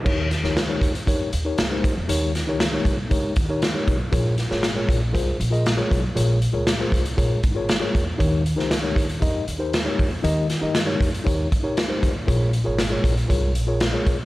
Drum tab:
CC |x---------------|----------------|----------------|----------------|
HH |--x-x-xxx-x-x-x-|x-x-x-x-x-x-x-x-|x-x-x-x-x-xxx-x-|x-x-x-xxx-x-x-x-|
SD |--ooo-------o---|--o-o-------o---|--ooo-------o---|----o-------o---|
BD |o-----o-o-----o-|------o-o-o---o-|o-----o-o-----o-|------o-o-o---o-|

CC |----------------|----------------|----------------|
HH |x-x-x-xxx-x-x-o-|x-x-x-xxx-x-x-x-|x-x-x-xxx-x-x-x-|
SD |---oo-------o---|--o-o-------o---|----o-------o---|
BD |o-----o-o-----o-|------o-o-o---o-|o-----o-o-----o-|